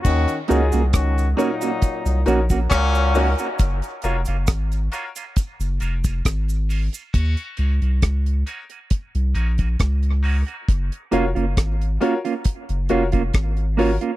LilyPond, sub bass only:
\new Staff \with { instrumentName = "Sub bass" } { \clef bass \time 4/4 \key ees \dorian \tempo 4 = 68 ees,16 r16 des,16 c,16 des,8 r8. c,16 bes,,8 des,8. r16 | ges,,16 r16 f,,16 ges,,16 aes,,8 r8. ges,,16 f,,8 aes,,8. r16 | ees,16 r16 des,16 c,16 des,8 r8. c,16 bes,,8 des,8. r16 | ges,,16 r16 f,,16 ges,,16 aes,,8 r8. ges,,16 f,,8 aes,,8. r16 | }